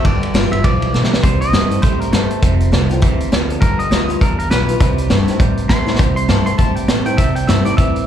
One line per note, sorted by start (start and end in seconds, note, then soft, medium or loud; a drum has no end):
0.04 0.24 G1 medium
0.04 0.32 G2 medium
0.04 0.32 D3 medium
0.04 0.33 G3 medium
0.04 0.51 D5 medium
0.04 kick loud
0.04 ride medium
0.23 ride medium
0.34 0.46 G1 loud
0.34 0.62 G2 medium
0.34 0.62 E3 medium
0.34 0.51 G3 medium
0.34 0.51 B3 medium
0.34 0.51 F4 loud
0.34 snare loud
0.34 ride medium
0.52 0.60 G1 medium
0.52 0.64 B3 medium
0.52 0.63 F4 medium
0.52 0.64 E5 medium
0.52 ride medium
0.64 0.83 B1 medium
0.64 0.91 G2 medium
0.64 0.93 E3 medium
0.64 0.91 F3 loud
0.64 1.22 D5 loud
0.64 kick loud
0.64 ride medium
0.82 ride medium
0.93 1.12 B1 medium
0.93 1.21 G2 medium
0.93 1.22 D3 medium
0.93 1.21 E3 medium
0.93 snare medium
1.04 snare medium
1.13 snare loud
1.23 1.51 C2 medium
1.23 1.80 C3 medium
1.23 1.51 C3 medium
1.23 1.51 G3 medium
1.23 1.40 C5 medium
1.23 kick loud
1.23 closed hi-hat medium
1.41 1.82 D#5 medium
1.41 closed hi-hat medium
1.52 1.80 G2 medium
1.52 1.80 C3 medium
1.52 1.70 E3 medium
1.52 1.70 G3 medium
1.52 1.81 A3 medium
1.52 1.70 C4 medium
1.52 1.69 E4 medium
1.52 snare loud
1.52 closed hi-hat medium
1.70 1.83 C4 soft
1.70 1.82 E4 medium
1.70 closed hi-hat medium
1.82 2.11 A2 medium
1.82 2.10 A2 medium
1.82 2.10 C3 medium
1.82 2.10 G3 medium
1.82 2.00 C5 medium
1.82 kick loud
1.82 closed hi-hat medium
2.00 2.13 A#4 medium
2.00 closed hi-hat medium
2.12 2.40 G2 medium
2.12 2.41 G2 medium
2.12 2.40 C3 medium
2.12 2.40 A3 medium
2.12 2.99 C5 medium
2.12 snare loud
2.12 closed hi-hat medium
2.31 closed hi-hat medium
2.42 2.70 F1 medium
2.42 3.00 F2 medium
2.42 2.70 F2 medium
2.42 2.70 C3 medium
2.42 kick loud
2.42 closed hi-hat medium
2.60 closed hi-hat medium
2.72 2.99 C2 loud
2.72 3.00 F2 medium
2.72 3.00 D3 medium
2.72 2.89 F3 medium
2.72 2.89 A3 medium
2.72 2.89 C4 medium
2.72 2.88 F4 medium
2.72 snare medium
2.72 closed hi-hat medium
2.89 3.02 C4 medium
2.89 3.01 F4 medium
2.89 closed hi-hat medium
3.02 3.29 D2 medium
3.02 3.29 F2 medium
3.02 3.30 C3 medium
3.02 3.30 E3 medium
3.02 kick loud
3.02 closed hi-hat medium
3.20 closed hi-hat medium
3.32 3.59 D2 medium
3.32 3.59 F2 medium
3.32 3.59 D3 medium
3.32 3.60 F3 medium
3.32 snare loud
3.32 closed hi-hat medium
3.50 closed hi-hat medium
3.61 3.89 G1 medium
3.61 3.89 G2 medium
3.61 3.89 D3 loud
3.61 3.90 G3 medium
3.61 3.78 A#4 medium
3.61 kick loud
3.61 closed hi-hat medium
3.79 4.20 D#5 medium
3.79 closed hi-hat medium
3.91 4.18 D2 loud
3.91 4.19 G2 medium
3.91 4.19 E3 medium
3.91 4.08 G3 medium
3.91 4.09 B3 medium
3.91 4.07 F4 medium
3.91 snare loud
3.91 closed hi-hat medium
4.08 4.21 B3 soft
4.08 4.20 F4 medium
4.08 closed hi-hat medium
4.21 4.48 E2 medium
4.21 4.48 G2 medium
4.21 4.78 D3 medium
4.21 4.49 D3 medium
4.21 4.38 A#4 medium
4.21 kick loud
4.21 closed hi-hat medium
4.39 4.50 A#4 medium
4.39 closed hi-hat medium
4.50 4.78 B1 medium
4.50 4.78 G2 medium
4.50 4.78 E3 loud
4.50 4.68 G3 medium
4.50 4.68 B3 medium
4.50 4.67 F4 medium
4.50 5.37 B4 medium
4.50 snare loud
4.50 closed hi-hat medium
4.68 4.81 B3 medium
4.68 4.80 F4 medium
4.68 closed hi-hat medium
4.80 5.08 C2 medium
4.80 5.08 C3 medium
4.80 5.38 C3 medium
4.80 5.08 G3 medium
4.80 kick loud
4.80 closed hi-hat loud
4.98 closed hi-hat medium
5.10 5.37 G2 loud
5.10 5.37 C3 medium
5.10 5.27 E3 medium
5.10 5.27 G3 medium
5.10 5.38 A3 medium
5.10 5.28 C4 medium
5.10 5.26 E4 medium
5.10 snare loud
5.10 closed hi-hat medium
5.27 5.40 C4 soft
5.27 5.39 E4 medium
5.27 snare soft
5.27 closed hi-hat medium
5.39 5.97 G2 medium
5.39 5.67 A2 loud
5.39 5.67 C3 medium
5.39 5.67 G3 medium
5.39 kick loud
5.39 closed hi-hat medium
5.57 closed hi-hat medium
5.69 5.97 A2 medium
5.69 5.97 C3 medium
5.69 5.87 E3 medium
5.69 5.87 G3 medium
5.69 5.97 A3 medium
5.69 5.87 C4 medium
5.69 5.85 E4 medium
5.69 5.98 C6 loud
5.69 kick medium
5.69 snare loud
5.69 closed hi-hat medium
5.86 5.99 C4 soft
5.86 5.98 E4 medium
5.86 snare medium
5.95 6.26 C3 medium
5.95 snare medium
5.99 6.27 C2 medium
5.99 6.56 C3 medium
5.99 6.27 G3 medium
5.99 kick loud
5.99 closed hi-hat medium
6.16 6.29 C6 medium
6.16 closed hi-hat medium
6.28 6.56 G2 loud
6.28 6.56 C3 medium
6.28 6.46 E3 medium
6.28 6.46 G3 medium
6.28 6.56 A3 medium
6.28 6.46 C4 medium
6.28 6.45 E4 medium
6.28 6.46 A5 medium
6.28 snare medium
6.28 closed hi-hat medium
6.46 6.59 C4 soft
6.46 6.58 E4 medium
6.46 6.58 C6 medium
6.46 closed hi-hat medium
6.58 7.16 G2 medium
6.58 6.86 A2 medium
6.58 6.86 C3 medium
6.58 6.86 G3 medium
6.58 6.75 A5 medium
6.58 kick medium
6.58 closed hi-hat medium
6.75 6.88 G5 medium
6.75 closed hi-hat medium
6.88 7.16 A2 medium
6.88 7.16 C3 medium
6.88 7.05 E3 medium
6.88 7.06 G3 medium
6.88 7.16 A3 medium
6.88 7.06 C4 medium
6.88 7.05 E4 medium
6.88 7.05 A5 medium
6.88 snare loud
6.88 closed hi-hat medium
7.06 7.19 C4 medium
7.06 7.18 E4 medium
7.06 7.18 G5 medium
7.06 closed hi-hat medium
7.17 7.46 C2 medium
7.17 7.46 C3 medium
7.17 7.75 C3 medium
7.17 7.46 G3 medium
7.17 7.35 E5 medium
7.17 kick loud
7.17 closed hi-hat medium
7.35 7.47 G5 medium
7.35 closed hi-hat medium
7.47 7.75 G2 loud
7.47 7.75 C3 medium
7.47 7.65 E3 medium
7.47 7.65 G3 medium
7.47 7.76 A3 medium
7.47 7.66 C4 medium
7.47 7.64 E4 medium
7.47 7.65 E5 medium
7.47 snare loud
7.47 closed hi-hat medium
7.65 7.78 C4 medium
7.65 7.77 E4 medium
7.65 7.77 D5 medium
7.65 closed hi-hat medium
7.77 8.05 A2 medium
7.77 8.05 C3 medium
7.77 8.07 E3 medium
7.77 8.06 G3 medium
7.77 8.07 E5 loud
7.77 kick loud
7.77 closed hi-hat medium
7.96 closed hi-hat medium